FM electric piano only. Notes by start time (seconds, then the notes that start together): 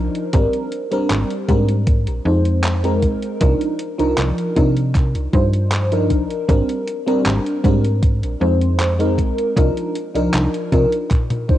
Already playing: F3 D4 D#4 A#4
0.33 G3 C4 D4 A#4
0.91 G3 C4 D4 A#4
1.48 G3 C4 D4 A#4
2.25 G#3 C4 D#4 C5
2.84 G#3 C4 D#4 A#4
3.40 F3 D4 D#4 A#4
3.98 F3 D4 D#4 A#4
4.56 F3 D4 D#4 A#4
5.33 F3 D4 D#4 C5
5.92 F3 D4 D#4 A#4
6.48 G3 C4 D4 A#4
7.06 G3 C4 D4 A#4
7.64 G3 C4 D4 A#4
8.40 G#3 C4 D#4 C5
8.99 G#3 C4 D#4 A#4
9.56 F3 D4 D#4 A#4
10.14 F3 D4 D#4 A#4
10.72 F3 D4 D#4 A#4
11.48 F3 D4 D#4 C5